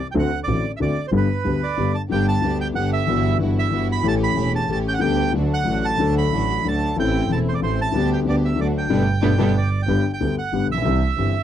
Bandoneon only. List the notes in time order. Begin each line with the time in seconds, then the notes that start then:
0.11 G5
0.19 F#5
0.44 D5
0.77 E5
0.82 D5
1.08 C5
1.17 B4
1.63 D5
1.95 A5
2.12 G5
2.28 A5
2.61 G5
2.75 F#5
2.93 E5
3.59 E5
3.92 B5
4.08 A5
4.23 B5
4.56 A5
4.72 A5
4.88 G5
4.94 F#5
5.01 G5
5.54 F#5
5.85 A5
6.18 B5
6.68 A5
7.00 G5
7.32 A5
7.48 C5
7.54 D5
7.63 C5
7.81 A5
8.13 G5
8.29 D5
8.45 E5
8.61 D5
8.78 G5
9.58 D5
9.82 G5
10.13 G5
10.38 F#5
10.71 E5